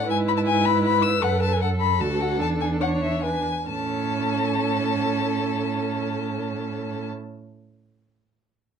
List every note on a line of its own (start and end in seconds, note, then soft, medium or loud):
0.00 0.10 A2 medium
0.08 1.22 G#2 medium
0.08 1.18 E4 medium
0.08 1.62 B4 medium
0.08 0.17 G#5 medium
0.28 0.32 B5 medium
0.37 0.41 A5 medium
0.46 0.67 G#5 medium
0.66 0.83 B5 medium
0.84 1.04 B5 medium
1.03 1.24 E6 medium
1.22 2.02 F#2 medium
1.22 1.96 A4 soft
1.22 1.41 F#5 medium
1.42 1.54 A5 medium
1.52 1.61 G#5 medium
1.61 2.82 A4 medium
1.61 1.69 F#5 medium
1.80 2.02 B5 medium
2.00 2.42 D2 soft
2.00 2.37 F#4 soft
2.00 2.22 A5 medium
2.21 2.40 F#5 medium
2.40 3.45 E2 soft
2.40 3.42 D4 medium
2.40 2.48 A5 medium
2.61 2.69 G#5 medium
2.81 3.25 C#5 soft
2.81 2.89 F#5 medium
3.02 3.22 E5 medium
3.23 3.45 B4 soft
3.23 3.67 G#5 medium
3.68 7.06 A2 medium
3.68 7.06 C#4 medium
3.68 7.05 A4 soft
3.68 7.06 A5 medium